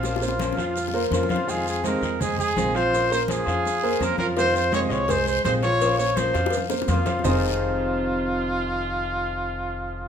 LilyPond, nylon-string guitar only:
\new Staff \with { instrumentName = "Nylon-string guitar" } { \time 4/4 \key f \minor \tempo 4 = 166 <f bes des' f' c''>8 <des' f' c''>8 <f bes des' f' c''>8 <des' f' c''>8 r4 <f bes des' f' c''>8 <des' f' c''>8 | <c ees aes c' f'>8 <aes c' f'>8 <c ees aes c' f'>8 <aes c' f'>8 r4 <c ees aes c' f'>8 <aes c' f'>8 | <f bes des' f' c''>8 <des' f' c''>8 <f bes des' f' c''>8 <des' f' c''>8 r4 <f bes des' f' c''>8 <des' f' c''>8 | <c ees aes c' f'>8 <aes c' f'>8 <c ees aes c' f'>8 <aes c' f'>8 r4 <c ees aes c' f'>8 <aes c' f'>8 |
<f bes des' f' c''>8 <des' f' c''>8 <f bes des' f' c''>8 <des' f' c''>8 r4 <f bes des' f' c''>8 <des' f' c''>8 | <f, c ees aes c' f'>1~ | <f, c ees aes c' f'>1 | }